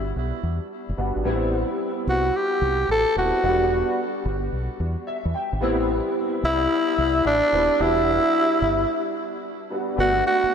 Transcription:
Already playing: fingered electric bass G1, grand piano G3 B3 D4 F#4
0.16 fingered electric bass B1
0.43 fingered electric bass E2
0.89 fingered electric bass F#1
0.97 fingered electric bass G1, grand piano G3 B3 D4 F#4
1.16 fingered electric bass G#1
1.24 fingered electric bass A1, grand piano G3 B3 C4 E4
2.07 fingered electric bass C2, tenor saxophone F#4
2.36 tenor saxophone G4
2.62 fingered electric bass C2
2.89 fingered electric bass A1, tenor saxophone A4
3.16 fingered electric bass D#1, grand piano G3 B3 C4 E4, tenor saxophone F#4
3.42 fingered electric bass E1, grand piano G3 B3 D4 F#4
4.25 fingered electric bass G1
4.52 fingered electric bass B1
4.80 fingered electric bass E2
5.07 grand piano E5
5.25 fingered electric bass E2
5.34 grand piano G5
5.53 fingered electric bass G#1
5.61 fingered electric bass A1, grand piano G3 B3 C4 E4
6.43 fingered electric bass C2, tenor saxophone E4
6.98 fingered electric bass C2
7.25 fingered electric bass A1, tenor saxophone D4
7.52 fingered electric bass D#1, grand piano G3 B3 C4 E4
7.79 fingered electric bass E1, grand piano G3 B3 D4 F#4, tenor saxophone E4
8.62 fingered electric bass G1
9.70 grand piano G3 B3 D4 F#4
9.97 fingered electric bass G1, grand piano A3 B3 D4 F#4, tenor saxophone F#4
10.27 tenor saxophone F#4
10.44 muted fingered electric bass stroke

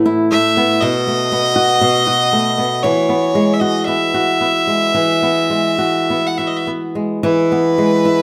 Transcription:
Already playing: nylon-string guitar A2 E3 A3 B3
0.06 nylon-string guitar E4
0.31 nylon-string guitar A3, fiddle E5
0.57 nylon-string guitar B3
0.81 nylon-string guitar B2, fiddle D#5
1.07 nylon-string guitar A3
1.32 nylon-string guitar B3
1.56 nylon-string guitar F#4
1.81 nylon-string guitar B2
2.07 nylon-string guitar F#4
2.33 nylon-string guitar A3
2.58 nylon-string guitar B3
2.83 nylon-string guitar E3, fiddle C#5
3.09 nylon-string guitar B3
3.35 nylon-string guitar G#3
3.53 fiddle E5
3.60 nylon-string guitar F#4, fiddle D#5
3.84 nylon-string guitar B3, fiddle E5
4.14 nylon-string guitar F#4
4.41 nylon-string guitar B3
4.67 nylon-string guitar G#3
4.94 nylon-string guitar E3
5.23 nylon-string guitar B3
5.50 nylon-string guitar G#3
5.78 nylon-string guitar F#4
6.10 nylon-string guitar B3
6.27 fiddle F#5
6.38 nylon-string guitar F#4, fiddle E5
6.47 fiddle D#5
6.56 fiddle E5
6.67 nylon-string guitar B3
6.95 nylon-string guitar G#3
7.23 nylon-string guitar E3, fiddle B4
7.52 nylon-string guitar B3
7.78 nylon-string guitar G#3
8.05 nylon-string guitar E4

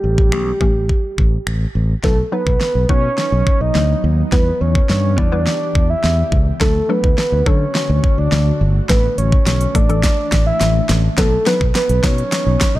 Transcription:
Already playing: synth pluck E3 A3 C#4 G4, soft synth lead G4
0.04 fingered electric bass A1
0.18 kick
0.32 fingered electric bass B1, synth pluck E3 A3 C#4 G4, finger snap
0.61 fingered electric bass A1, synth pluck E3 A3 C#4 G4, kick
0.89 kick
1.18 fingered electric bass A1, kick
1.47 fingered electric bass A1, finger snap
1.75 fingered electric bass A1
2.04 fingered electric bass B1, synth pluck F#3 B3 D#4 B4, ambient pad F#3 B3 D#4, soft synth lead A4, kick, snare
2.32 synth pluck F#3 B3 D#4 B4, soft synth lead B4
2.47 fingered electric bass B1, kick
2.61 soft synth lead B4, snare
2.75 fingered electric bass B1
2.89 fingered electric bass B2, synth pluck F#3 B3 D#4 B4, soft synth lead C#5, kick
3.18 snare
3.32 fingered electric bass B1
3.47 kick
3.61 fingered electric bass B1, soft synth lead D#5
3.75 fingered electric bass D2, snare
4.04 fingered electric bass D#2
4.32 fingered electric bass E2, ambient pad E3 G4, synth pluck G3 B3 E4 B4, soft synth lead B4, kick, snare
4.61 fingered electric bass E2, soft synth lead C#5
4.75 kick
4.89 fingered electric bass G2, soft synth lead C#5, snare
5.18 fingered electric bass E2, synth pluck G3 B3 E4 D5, soft synth lead D5, kick
5.32 synth pluck G3 B3 E4 B4
5.47 snare
5.75 fingered electric bass E2, kick
5.90 soft synth lead E5
6.04 fingered electric bass E2, snare
6.32 fingered electric bass C#2, kick
6.60 fingered electric bass D2, ambient pad D3 A3 F#4, synth pluck F#3 A3 D4 A4, soft synth lead A4, kick, snare
6.89 synth pluck F#3 A3 D4 A4, soft synth lead B4
7.04 fingered electric bass D2, kick
7.18 soft synth lead B4, snare
7.32 fingered electric bass D2
7.46 fingered electric bass D3, synth pluck F#3 A3 D4 A4, soft synth lead C#5, kick
7.75 snare
7.90 fingered electric bass D2
8.04 kick
8.18 fingered electric bass D2, soft synth lead D5
8.32 fingered electric bass D2, snare
8.61 fingered electric bass G1
8.89 fingered electric bass A1, synth pluck E3 A3 D4 A4, ambient pad E3 A3 D4, soft synth lead B4, kick, snare, closed hi-hat
9.18 fingered electric bass A1, soft synth lead C#5, closed hi-hat
9.32 kick
9.46 fingered electric bass B1, soft synth lead C#5, snare, closed hi-hat
9.61 closed hi-hat
9.75 fingered electric bass A1, synth pluck E3 A3 D4 A4, soft synth lead D5, kick, closed hi-hat
9.89 synth pluck E3 A3 D4 A4, closed hi-hat
10.03 kick, snare, closed hi-hat
10.32 fingered electric bass A1, kick, snare, closed hi-hat
10.47 soft synth lead E5
10.61 fingered electric bass A1, snare, closed hi-hat
10.89 fingered electric bass A1, snare, closed hi-hat
11.18 fingered electric bass B1, synth pluck F#3 B3 D#4 B4, ambient pad F#3 B3 D#4, soft synth lead A4, kick, snare, closed hi-hat
11.46 synth pluck F#3 B3 D#4 B4, soft synth lead B4, snare, closed hi-hat
11.61 fingered electric bass B1, kick
11.75 soft synth lead B4, snare, closed hi-hat
11.89 fingered electric bass B1, closed hi-hat
12.03 fingered electric bass B2, synth pluck F#3 B3 D#4 B4, soft synth lead C#5, kick, snare, closed hi-hat
12.18 closed hi-hat
12.32 snare, closed hi-hat
12.46 fingered electric bass B1
12.61 kick, snare, closed hi-hat
12.75 fingered electric bass B1, soft synth lead D#5

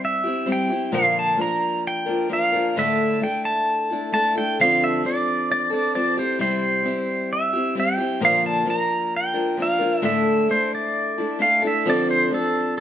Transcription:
Already playing: steel-string acoustic guitar G3 C4 E4 G4
0.05 pedal steel guitar E5
0.24 steel-string acoustic guitar C4 E4 G4
0.46 steel-string acoustic guitar G3 C4 E4 G4
0.52 pedal steel guitar G5
0.69 steel-string acoustic guitar C4 E4 G4
0.92 steel-string acoustic guitar A#2 D3 F3 A#3 D4 A#4, pedal steel guitar F5
1.19 pedal steel guitar A5
1.37 steel-string acoustic guitar F3 A#3 D4 A#4
1.42 pedal steel guitar A#5
1.87 pedal steel guitar G5
2.06 steel-string acoustic guitar F3 A#3 D4 A#4
2.29 steel-string acoustic guitar F3 A#3 D4 A#4
2.33 pedal steel guitar F5
2.52 steel-string acoustic guitar F3 A#3 D4 A#4
2.76 steel-string acoustic guitar A2 D3 A3 D4 E4 A4, pedal steel guitar E5
3.20 steel-string acoustic guitar A3 D4 E4 A4, pedal steel guitar G5
3.45 pedal steel guitar A5
3.90 steel-string acoustic guitar A3 D4 E4 A4
4.12 steel-string acoustic guitar A3 D4 E4 A4, pedal steel guitar A5
4.35 steel-string acoustic guitar A3 D4 E4 A4, pedal steel guitar G5
4.59 steel-string acoustic guitar D3 F3 C4 D4 A4, pedal steel guitar F5
4.84 pedal steel guitar E5
5.03 steel-string acoustic guitar F3 C4 D4 A4, pedal steel guitar D5
5.52 pedal steel guitar D5
5.70 steel-string acoustic guitar C4 D4 A4, pedal steel guitar D5
5.95 steel-string acoustic guitar F3 C4 D4 A4, pedal steel guitar D5
6.17 steel-string acoustic guitar C4 E4 G4, pedal steel guitar C5
6.39 steel-string acoustic guitar C3 G3 C4 E4 G4, pedal steel guitar C5
6.83 steel-string acoustic guitar G3 C4 E4 G4
7.33 pedal steel guitar E5
7.53 steel-string acoustic guitar C4 E4 G4
7.75 steel-string acoustic guitar G3 C4 E4 G4
7.80 pedal steel guitar G5
7.97 steel-string acoustic guitar C4 E4 G4
8.20 steel-string acoustic guitar A#2 D3 F3 A#3 D4 A#4
8.25 pedal steel guitar F5
8.46 pedal steel guitar A5
8.65 steel-string acoustic guitar F3 A#3 D4 A#4
8.70 pedal steel guitar A#5
9.16 pedal steel guitar G5
9.33 steel-string acoustic guitar F3 A#3 D4 A#4
9.57 steel-string acoustic guitar F3 A#3 D4 A#4
9.62 pedal steel guitar F5
9.78 steel-string acoustic guitar F3 A#3 D4 A#4
10.02 steel-string acoustic guitar A2 D3 A3 D4 E4 A4, pedal steel guitar E5
10.49 steel-string acoustic guitar A3 D4 E4 A4, pedal steel guitar C5
10.75 pedal steel guitar D5
11.18 steel-string acoustic guitar A3 D4 E4 A4
11.39 steel-string acoustic guitar A3 D4 E4 A4, pedal steel guitar F5
11.62 steel-string acoustic guitar A3 D4 E4 A4
11.67 pedal steel guitar E5
11.85 steel-string acoustic guitar D3 F3 C4 D4 A4
11.90 pedal steel guitar D5
12.11 pedal steel guitar C5
12.30 steel-string acoustic guitar F3 C4 D4 A4
12.34 pedal steel guitar A4

